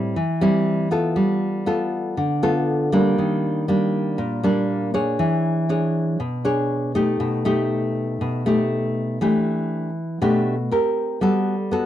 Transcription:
Already playing: A2 G3 C4 E4
0.16 E3
0.41 G3 C4 E4
0.91 B3 F4 A4
1.16 G3
1.66 B3 F4 A4
2.17 D3
2.43 B3 F4 A4
2.92 G3 A#3 D4
3.18 D#3
3.68 G3 A#3 D4
4.18 A#2
4.43 G3 A#3 D4
4.94 D4 G#4 C#5
5.19 E3
5.69 D4 G#4 C#5
6.20 B2
6.45 D4 G#4 C#5
6.95 A3 D#4 G4
7.20 B2
7.45 A3 D#4 G4
8.21 B2
8.46 A3 D#4 G4
9.21 E3 A3 D4 G4
10.22 B2 A3 D4 G4
10.71 C4 G4 A#4
11.21 G3 B3 F#4 A4
11.71 B3 F#4 A4

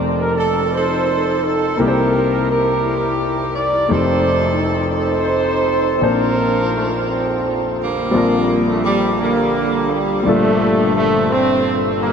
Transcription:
Already playing: F1 F2 A3 D#4 G4 A4 D5
0.20 A#4
0.38 A4
0.73 D#4 A4 C5
1.43 A4
1.76 C2 C3 A#3 E4 G4 A#4
1.82 A#4
1.88 C5
2.49 E4 G4 A#4
3.55 D5
3.88 F1 F2 A3 D#4 G4 A4 C5
3.94 D5
4.97 D#4 A4 C5
5.98 A#1 A#2 C4 D4
6.02 D4 F4 A#4 C5 A5
6.74 A3
7.09 F3 C4 A4
7.80 D3 G3 A#3
8.11 A#1 A#2 G3 C4 D4 F4
8.17 A#4
8.67 A3
8.84 G3
9.18 D3 G3 A#3
9.89 G3
10.23 G1 G2 A#2 G3 A3 D4
10.28 D3 F3 F4 A4
10.95 A3
11.31 C4
12.00 D3 G3 A#3

